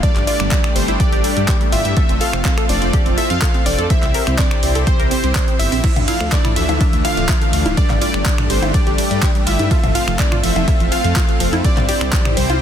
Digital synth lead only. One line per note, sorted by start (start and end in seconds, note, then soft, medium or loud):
0.03 0.26 D5 loud
0.27 0.77 D5 loud
0.76 0.99 C5 medium
1.00 1.68 D5 loud
1.72 2.22 E5 loud
2.21 2.69 F5 loud
2.69 3.19 D5 loud
3.18 3.32 E5 loud
3.30 3.67 F5 loud
3.66 3.89 D5 loud
3.90 4.40 E5 loud
4.38 4.88 D5 loud
4.87 5.10 C5 loud
5.11 5.61 C5 loud
5.59 6.07 E5 loud
6.08 6.33 F5 loud
6.32 6.58 D5 loud
6.56 7.04 E5 loud
7.05 7.79 F5 loud
7.77 8.01 D5 loud
8.01 8.51 D5 loud
8.50 8.73 C5 medium
8.74 9.43 D5 loud
9.47 9.96 E5 loud
9.95 10.21 F5 loud
10.19 10.43 D5 loud
10.43 10.93 E5 loud
10.92 11.64 F5 loud
11.64 11.87 D5 loud
11.88 12.38 D5 loud
12.37 12.62 C5 medium